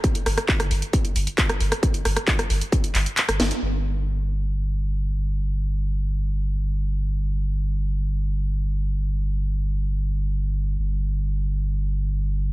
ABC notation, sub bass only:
X:1
M:4/4
L:1/16
Q:1/4=134
K:Cm
V:1 name="Sub bass" clef=bass
z G,,, G,,, z2 G,,, G,,, z2 G,,, G,,, z2 G,,, G,,, z | z G,,, G,,, z2 G,,, G,,, z2 G,,, G,,, z2 G,,, G,,, z | G,,,16- | G,,,16- |
G,,,16- | G,,,16 | G,,,16 |]